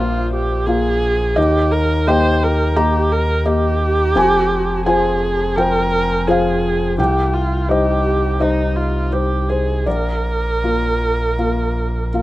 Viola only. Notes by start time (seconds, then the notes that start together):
Already playing: F4
0.34 G4
0.67 G#4
1.38 G4
1.71 A#4
2.07 C5
2.44 A#4
2.77 G4
3.12 A#4
3.48 G4
4.87 G#4
5.57 A#4
6.28 G#4
6.99 G4
7.34 F4
7.69 G4
8.41 D#4
8.76 F4
9.13 G4
9.49 G#4
9.87 A#4